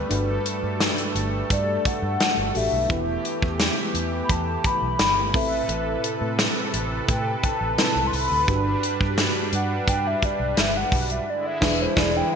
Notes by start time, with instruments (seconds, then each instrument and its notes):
Already playing: analog synth pad G3 A3, soft synth lead B4
0.09 fingered electric bass G1, fm electric piano G2 D4 F#4 G4 B4, analog synth pad A4, closed hi-hat
0.46 closed hi-hat
0.63 fingered electric bass G2
0.80 snare, closed hi-hat
0.98 closed hi-hat
1.15 fingered electric bass G1, closed hi-hat
1.50 fingered electric bass G2, soft synth lead D5, kick, closed hi-hat
1.85 soft synth lead F#5, kick, closed hi-hat
2.02 fingered electric bass G2
2.20 snare, closed hi-hat
2.37 fingered electric bass G1
2.54 fingered electric bass A1, fm electric piano D4 F#4 G4 A4, soft synth lead E5, open hi-hat
2.72 fingered electric bass B1
2.89 fingered electric bass E1, fm electric piano E3 B3 E4 G4 B4, analog synth pad E3 G4, kick, closed hi-hat
3.25 closed hi-hat
3.42 fingered electric bass E2, kick
3.60 snare, closed hi-hat, tambourine
3.94 fingered electric bass E2, closed hi-hat
4.24 soft synth lead B5
4.29 fingered electric bass E2, soft synth lead A5, kick, closed hi-hat
4.64 soft synth lead B5, kick, closed hi-hat
4.82 fingered electric bass B1
4.99 fingered electric bass G1, snare, closed hi-hat, tambourine
5.33 fingered electric bass A1, fm electric piano A2 C4 E4 A4 B4, analog synth pad C3 A4 B4, soft synth lead E5, kick, open hi-hat
5.69 fingered electric bass A1, closed hi-hat
6.04 closed hi-hat
6.21 fingered electric bass A2
6.39 snare, closed hi-hat, tambourine
6.74 fingered electric bass A1, closed hi-hat
7.08 fingered electric bass A2, soft synth lead G5, kick, closed hi-hat
7.43 soft synth lead A5, kick, closed hi-hat
7.61 fingered electric bass A1
7.78 fm electric piano C4 E4 A4 B4, snare, closed hi-hat, tambourine
7.95 fingered electric bass C2
8.07 soft synth lead C6
8.13 fingered electric bass C2, soft synth lead B5, open hi-hat
8.31 fingered electric bass D2
8.47 fingered electric bass G1, fm electric piano G2 D4 F#4 G4 B4, analog synth pad G3 D4, kick, closed hi-hat
8.83 closed hi-hat
9.01 fingered electric bass G2, kick
9.18 snare, closed hi-hat, tambourine
9.53 fingered electric bass G2, soft synth lead F#5, closed hi-hat
9.88 fingered electric bass G2, soft synth lead G5, kick, closed hi-hat
10.07 soft synth lead E5
10.22 soft synth lead D5, kick, closed hi-hat
10.40 fingered electric bass B1
10.57 fingered electric bass G1, soft synth lead E5, snare, closed hi-hat, tambourine
10.77 soft synth lead F#5
10.92 fingered electric bass B1, kick, open hi-hat
11.10 soft synth lead E5, closed hi-hat
11.27 analog synth pad D3 G#3 E4, soft synth lead D5
11.46 soft synth lead E5
11.61 fingered electric bass E1, fm electric piano E3 D4 E4 G#4 B4, kick, snare, crash
11.82 soft synth lead C5
11.96 fingered electric bass E1, fm electric piano E3 D4 E4 G#4 B4, soft synth lead D5, kick, snare
12.17 soft synth lead G5